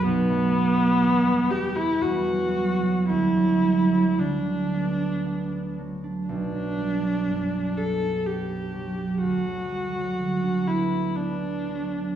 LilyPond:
<<
  \new Staff \with { instrumentName = "Viola" } { \time 3/4 \key b \minor \tempo 4 = 60 b4. g'16 e'16 fis'4 | e'4 d'4. r8 | d'4. a'8 g'4 | fis'4. e'8 d'4 | }
  \new Staff \with { instrumentName = "Harp" } { \clef bass \time 3/4 \key b \minor <b,, fis b fis'>16 a16 b16 a16 e,16 g16 a16 g16 e,16 fis16 g16 fis16 | d,16 fis16 g16 fis16 d16 d'16 b16 d'16 b16 d'16 fis16 d'16 | b,,16 fis16 g16 fis16 fis,16 d'16 b16 d'16 b16 d'16 fis16 d'16 | d,16 fis16 g16 fis16 d16 d'16 b16 d'16 b16 d'16 fis16 d'16 | }
>>